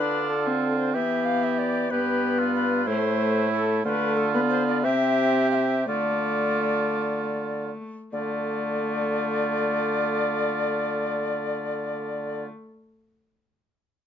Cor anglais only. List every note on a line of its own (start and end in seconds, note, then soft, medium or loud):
0.00 0.96 F4 medium
0.94 1.91 G4 medium
1.91 2.40 G4 medium
2.39 2.89 F4 medium
2.87 3.84 E4 medium
3.85 4.86 F4 medium
4.85 5.88 G4 medium
5.88 7.71 F4 medium
8.14 12.48 F4 medium